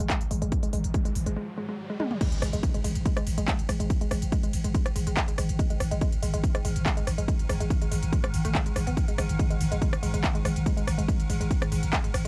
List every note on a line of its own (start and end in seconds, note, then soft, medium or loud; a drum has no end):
0.00 1.37 G#2 medium
0.00 1.37 D#3 medium
0.00 riser medium
0.10 0.16 G#3 medium
0.10 kick loud
0.10 clap loud
0.10 closed hi-hat medium
0.21 closed hi-hat medium
0.31 0.42 G#1 loud
0.31 0.35 G#3 medium
0.31 open hi-hat loud
0.42 0.52 G#1 medium
0.42 0.48 G#3 medium
0.42 closed hi-hat medium
0.52 kick loud
0.52 closed hi-hat medium
0.63 0.67 G#3 medium
0.63 closed hi-hat medium
0.73 0.84 G#1 loud
0.73 0.80 G#3 medium
0.73 open hi-hat loud
0.84 0.94 G#1 medium
0.84 closed hi-hat medium
0.94 0.99 G#3 medium
0.94 kick loud
0.94 closed hi-hat medium
1.05 1.11 G#3 medium
1.05 closed hi-hat medium
1.15 1.26 G#1 loud
1.15 open hi-hat loud
1.26 1.36 G#1 medium
1.26 1.30 G#3 medium
1.26 closed hi-hat medium
1.37 1.43 G#3 medium
1.58 1.64 G#3 medium
1.69 1.73 G#3 medium
1.90 1.94 G#3 medium
2.00 2.04 G#3 loud
2.00 high tom medium
2.11 mid tom medium
2.21 12.28 G#2 medium
2.21 12.28 D#3 medium
2.21 2.28 G#3 medium
2.21 kick loud
2.21 closed hi-hat medium
2.21 crash loud
2.21 ride medium
2.21 impact medium
2.32 closed hi-hat medium
2.32 ride medium
2.42 2.53 G#1 loud
2.42 2.47 G#3 medium
2.42 cross-stick medium
2.42 open hi-hat loud
2.42 ride medium
2.53 2.63 G#1 medium
2.53 2.59 G#3 medium
2.53 closed hi-hat medium
2.53 ride medium
2.63 kick loud
2.63 closed hi-hat medium
2.63 ride medium
2.74 2.78 G#3 medium
2.74 closed hi-hat medium
2.74 ride medium
2.84 2.95 G#1 loud
2.84 2.91 G#3 medium
2.84 open hi-hat loud
2.84 ride medium
2.96 3.05 G#1 medium
2.96 closed hi-hat medium
2.96 ride medium
3.06 3.10 G#3 medium
3.06 kick loud
3.06 closed hi-hat medium
3.06 ride medium
3.17 3.23 G#3 medium
3.17 cross-stick medium
3.17 closed hi-hat medium
3.17 ride medium
3.27 3.37 G#1 loud
3.27 open hi-hat loud
3.27 ride medium
3.38 3.48 G#1 medium
3.38 3.42 G#3 medium
3.38 closed hi-hat medium
3.38 ride medium
3.48 3.54 G#3 medium
3.48 kick loud
3.48 clap loud
3.48 closed hi-hat medium
3.48 ride medium
3.59 closed hi-hat medium
3.59 ride medium
3.69 3.79 G#1 loud
3.69 3.73 G#3 medium
3.69 cross-stick medium
3.69 open hi-hat loud
3.69 ride medium
3.80 3.90 G#1 medium
3.80 3.86 G#3 medium
3.80 closed hi-hat medium
3.80 ride medium
3.90 kick loud
3.90 closed hi-hat medium
3.90 ride medium
4.01 4.05 G#3 medium
4.01 closed hi-hat medium
4.01 ride medium
4.11 4.22 G#1 loud
4.11 4.18 G#3 medium
4.11 cross-stick medium
4.11 open hi-hat loud
4.11 ride medium
4.22 4.32 G#1 medium
4.22 closed hi-hat medium
4.22 ride medium
4.32 4.37 G#3 medium
4.32 kick loud
4.32 closed hi-hat medium
4.32 ride medium
4.43 4.49 G#3 medium
4.43 closed hi-hat medium
4.43 ride medium
4.53 4.64 G#1 loud
4.53 open hi-hat loud
4.53 ride medium
4.64 4.74 G#1 medium
4.64 4.69 G#3 medium
4.64 closed hi-hat medium
4.64 ride medium
4.75 4.81 G#3 medium
4.75 kick loud
4.75 closed hi-hat medium
4.75 ride medium
4.86 cross-stick medium
4.86 closed hi-hat medium
4.86 ride medium
4.96 5.06 G#1 loud
4.96 5.00 G#3 medium
4.96 open hi-hat loud
4.96 ride medium
5.07 5.17 G#1 medium
5.07 5.13 G#3 medium
5.07 closed hi-hat medium
5.07 ride medium
5.17 kick loud
5.17 clap loud
5.17 closed hi-hat medium
5.17 ride medium
5.28 5.32 G#3 medium
5.28 closed hi-hat medium
5.28 ride medium
5.38 5.48 G#1 loud
5.38 5.45 G#3 medium
5.38 cross-stick medium
5.38 open hi-hat loud
5.38 ride medium
5.49 5.59 G#1 medium
5.49 closed hi-hat medium
5.49 ride medium
5.59 5.64 G#3 medium
5.59 kick loud
5.59 closed hi-hat medium
5.59 ride medium
5.70 5.76 G#3 medium
5.70 closed hi-hat medium
5.70 ride medium
5.80 5.91 G#1 loud
5.80 cross-stick medium
5.80 open hi-hat loud
5.80 ride medium
5.91 6.01 G#1 medium
5.91 5.95 G#3 medium
5.91 closed hi-hat medium
5.91 ride medium
6.01 6.08 G#3 medium
6.01 kick loud
6.01 closed hi-hat medium
6.01 ride medium
6.12 closed hi-hat medium
6.12 ride medium
6.22 6.33 G#1 loud
6.22 6.27 G#3 medium
6.22 open hi-hat loud
6.22 ride medium
6.34 6.43 G#1 medium
6.34 6.40 G#3 medium
6.34 closed hi-hat medium
6.34 ride medium
6.44 kick loud
6.44 closed hi-hat medium
6.44 ride medium
6.55 6.59 G#3 medium
6.55 cross-stick medium
6.55 closed hi-hat medium
6.55 ride medium
6.65 6.75 G#1 loud
6.65 6.71 G#3 medium
6.65 open hi-hat loud
6.65 ride medium
6.76 6.86 G#1 medium
6.76 closed hi-hat medium
6.76 ride medium
6.86 6.90 G#3 medium
6.86 kick loud
6.86 clap loud
6.86 closed hi-hat medium
6.86 ride medium
6.97 7.03 G#3 medium
6.97 closed hi-hat medium
6.97 ride medium
7.07 7.17 G#1 loud
7.07 cross-stick medium
7.07 open hi-hat loud
7.07 ride medium
7.18 7.28 G#1 medium
7.18 7.22 G#3 medium
7.18 closed hi-hat medium
7.18 ride medium
7.28 7.35 G#3 medium
7.28 kick loud
7.28 closed hi-hat medium
7.28 ride medium
7.39 closed hi-hat medium
7.39 ride medium
7.49 7.60 G#1 loud
7.49 7.54 G#3 medium
7.49 cross-stick medium
7.49 open hi-hat loud
7.49 ride medium
7.60 7.70 G#1 medium
7.60 7.66 G#3 medium
7.60 closed hi-hat medium
7.60 ride medium
7.70 kick loud
7.70 closed hi-hat medium
7.70 ride medium
7.82 7.86 G#3 medium
7.82 closed hi-hat medium
7.82 ride medium
7.91 8.02 G#1 loud
7.91 7.98 G#3 medium
7.91 open hi-hat loud
7.91 ride medium
8.03 8.12 G#1 medium
8.03 closed hi-hat medium
8.03 ride medium
8.13 8.17 G#3 medium
8.13 kick loud
8.13 closed hi-hat medium
8.13 ride medium
8.24 8.30 G#3 medium
8.24 cross-stick loud
8.24 closed hi-hat medium
8.24 ride medium
8.34 8.44 G#1 loud
8.34 open hi-hat loud
8.34 ride medium
8.45 8.55 G#1 medium
8.45 8.49 A3 loud
8.45 closed hi-hat medium
8.45 ride medium
8.55 8.59 G#3 loud
8.55 kick loud
8.55 clap loud
8.55 closed hi-hat medium
8.55 ride medium
8.66 8.72 G#3 medium
8.66 closed hi-hat medium
8.66 ride medium
8.76 8.86 G#1 loud
8.76 8.80 G#3 medium
8.76 cross-stick medium
8.76 open hi-hat loud
8.76 ride medium
8.87 8.97 G#1 medium
8.87 8.90 B3 medium
8.87 closed hi-hat medium
8.87 ride medium
8.97 kick loud
8.97 closed hi-hat medium
8.97 ride medium
9.08 9.12 G#3 medium
9.08 closed hi-hat medium
9.08 ride medium
9.18 9.29 G#1 loud
9.18 9.25 G#3 medium
9.18 cross-stick loud
9.18 open hi-hat loud
9.18 ride medium
9.29 9.39 G#1 medium
9.29 closed hi-hat medium
9.29 ride medium
9.39 9.44 G#3 medium
9.39 kick loud
9.39 closed hi-hat medium
9.39 ride medium
9.50 9.56 G#3 medium
9.50 closed hi-hat medium
9.50 ride medium
9.60 9.71 G#1 loud
9.60 open hi-hat loud
9.60 ride medium
9.72 9.82 G#1 medium
9.72 9.76 G#3 medium
9.72 closed hi-hat medium
9.72 ride medium
9.82 9.88 G#3 medium
9.82 kick loud
9.82 closed hi-hat medium
9.82 ride medium
9.93 cross-stick loud
9.93 closed hi-hat medium
9.93 ride medium
10.03 10.13 G#1 loud
10.03 10.07 G#3 medium
10.03 open hi-hat loud
10.03 ride medium
10.14 10.24 G#1 medium
10.14 10.20 G#3 medium
10.14 closed hi-hat medium
10.14 ride medium
10.24 kick loud
10.24 clap loud
10.24 closed hi-hat medium
10.24 ride medium
10.35 10.39 G#3 medium
10.35 closed hi-hat medium
10.35 ride medium
10.45 10.56 G#1 loud
10.45 10.52 G#3 medium
10.45 cross-stick medium
10.45 open hi-hat loud
10.45 ride medium
10.56 10.66 G#1 medium
10.56 closed hi-hat medium
10.56 ride medium
10.66 10.71 G#3 medium
10.66 kick loud
10.66 closed hi-hat medium
10.66 ride medium
10.77 10.83 G#3 medium
10.77 closed hi-hat medium
10.77 ride medium
10.87 10.98 G#1 loud
10.87 cross-stick medium
10.87 open hi-hat loud
10.87 ride medium
10.98 11.08 G#1 medium
10.98 11.02 G#3 medium
10.98 closed hi-hat medium
10.98 ride medium
11.08 11.15 G#3 medium
11.08 kick loud
11.08 closed hi-hat medium
11.08 ride medium
11.20 closed hi-hat medium
11.20 ride medium
11.30 11.40 G#1 loud
11.30 11.34 G#3 medium
11.30 open hi-hat loud
11.30 ride medium
11.40 11.50 G#1 medium
11.40 11.47 G#3 medium
11.40 closed hi-hat medium
11.40 ride medium
11.51 kick loud
11.51 closed hi-hat medium
11.51 ride medium
11.62 11.66 G#3 medium
11.62 cross-stick loud
11.62 closed hi-hat soft
11.62 ride medium
11.72 11.82 G#1 loud
11.72 11.78 G#3 medium
11.72 open hi-hat loud
11.72 ride medium
11.83 11.93 G#1 medium
11.83 closed hi-hat medium
11.83 ride medium
11.93 11.97 G#3 medium
11.93 kick loud
11.93 clap loud
11.93 closed hi-hat medium
11.93 ride medium
12.04 12.10 G#3 medium
12.04 closed hi-hat medium
12.04 ride medium
12.14 12.24 G#1 loud
12.14 cross-stick medium
12.14 open hi-hat loud
12.14 ride medium